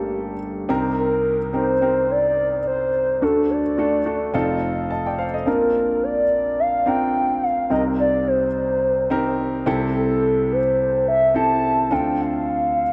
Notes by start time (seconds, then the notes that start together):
Already playing: G1 G2 A3 A#3 D4 G4 A4 A5
0.69 C2 C3 C4 D#4 G4 A#4
0.98 A#4
1.53 C4 D#4 G4 A#4 C5
1.81 C4 D#4 G4 A#4
2.11 D5
2.67 C5
3.22 D2 D3 A3 D4 F#4 A4
3.50 D5
3.78 A3 D4 F#4 A4
4.05 A3 D4 F#4 A4
4.34 F1 F2 C4 D#4 F4 A4
4.91 D#5 A5
5.06 D5 G5
5.18 C5 F5
5.34 A4 D#5
5.46 A#1 A#2 C4 D4 F4 A#4
6.03 D5
6.60 F5
6.86 C4 D4 F4 A#4 G5
7.43 F5
7.70 C2 C3 C4 D#4 G4 A#4 D#5
7.99 D5
8.28 C5
9.10 C4 D#4 G4 A#4
9.66 C2 C3 C4 E4 G4 A4
9.96 A4
10.52 C5
11.08 E5
11.34 C4 E4 G4 A4 A5
11.91 D2 D3 C4 D4 F4 A4 G5
12.21 F5